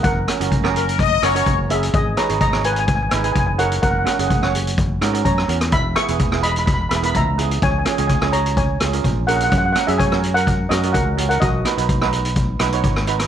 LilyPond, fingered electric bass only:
\new Staff \with { instrumentName = "Fingered electric bass" } { \clef bass \time 4/4 \key fis \mixolydian \tempo 4 = 126 fis,,8 r16 fis,,4.~ fis,,16 fis,,8 fis,,4 | gis,,8 r16 gis,,4.~ gis,,16 gis,,8 fis,,4 | fis,,8 r16 fis,,4.~ fis,,16 gis,8 fis,8 e,8 | e,,8 r16 e,,4.~ e,,16 e,,8 cis,4 |
cis,8 r16 cis,4.~ cis,16 cis,8 ais,,4 | fis,8 r16 fis,4.~ fis,16 fis,8 cis,4 | b,,8 r16 b,,4.~ b,,16 b,,8 gis,,4 | }